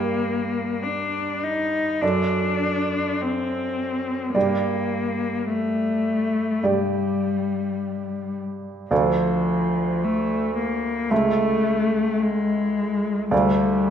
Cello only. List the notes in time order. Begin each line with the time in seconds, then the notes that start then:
Already playing: A#3
0.82 D4
1.43 D#4
2.01 D4
3.21 C4
4.35 A#3
5.52 A3
6.65 G3
8.91 F3
10.04 A3
10.57 A#3
11.09 A3
12.22 G#3
13.31 G3